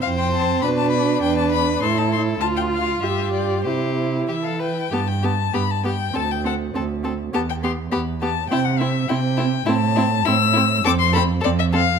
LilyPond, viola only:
\new Staff \with { instrumentName = "Viola" } { \time 2/4 \key c \major \tempo 4 = 102 c'4 d'4~ | d'4 e'4 | f'4 g'4 | e'4. r8 |
\key g \major b8 b8 b8 b8 | c'8 c'8 c'8 c'8 | b8 b8 b8 b8 | c'8 c'8 c'8 c'8 |
\key a \minor c'8 c'8 c'8 c'8 | c'8 c'8 c'8 c'8 | }